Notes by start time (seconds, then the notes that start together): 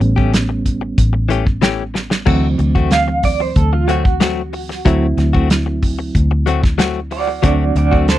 Already playing: G3 B3 C#4
0.00 A1, muted clean electric guitar stroke, closed hi-hat
0.16 A3 C#4 G4, kick
0.33 muted clean electric guitar stroke, snare, closed hi-hat
0.49 muted clean electric guitar stroke
0.66 kick, closed hi-hat
0.81 muted clean electric guitar stroke
0.98 A1, kick, closed hi-hat
1.13 muted clean electric guitar stroke
1.29 E3 A3 C#4 G4, closed hi-hat
1.46 muted clean electric guitar stroke, kick
1.62 E3 A3 C#4 G4, snare, closed hi-hat
1.94 muted clean electric guitar stroke, snare
2.10 muted clean electric guitar stroke, snare
2.26 D2 E3 F#3 A3 C4 F#4, kick, crash
2.58 D2, muted clean electric guitar stroke, closed hi-hat
2.75 A3 C4 F#4, kick
2.91 F5, muted clean electric guitar stroke, snare, closed hi-hat
3.08 muted clean electric guitar stroke
3.23 D5, kick, open hi-hat
3.40 C5, muted clean electric guitar stroke
3.56 D2 A4, kick, closed hi-hat
3.73 F4, muted clean electric guitar stroke
3.88 F#3 A3 C4 F#4, closed hi-hat
4.04 muted clean electric guitar stroke, kick
4.20 F#3 A3 C4 F#4, snare, closed hi-hat
4.53 muted clean electric guitar stroke, open hi-hat
4.69 muted clean electric guitar stroke, snare
4.85 D2 F#3 A3 C4 E4 F#4, kick, closed hi-hat
5.17 D2, muted clean electric guitar stroke, snare, closed hi-hat
5.33 A3 C4 F#4, kick
5.49 muted clean electric guitar stroke, snare, closed hi-hat
5.66 muted clean electric guitar stroke
5.83 kick, open hi-hat
5.99 muted clean electric guitar stroke
6.15 D2, kick, closed hi-hat
6.31 muted clean electric guitar stroke
6.46 F#3 A3 C4 F#4, closed hi-hat
6.63 muted clean electric guitar stroke, kick, snare
6.78 F#3 A3 C4 F#4, snare, closed hi-hat
7.11 F#4 D5, muted clean electric guitar stroke, open hi-hat
7.28 muted clean electric guitar stroke
7.43 D2 F#3 A3 C4 D4 F#4 D5, kick, closed hi-hat
7.75 D2 F#4 D5, muted clean electric guitar stroke, closed hi-hat
7.91 A3 C4 F#4, kick
8.08 A4 C5, muted clean electric guitar stroke, snare, closed hi-hat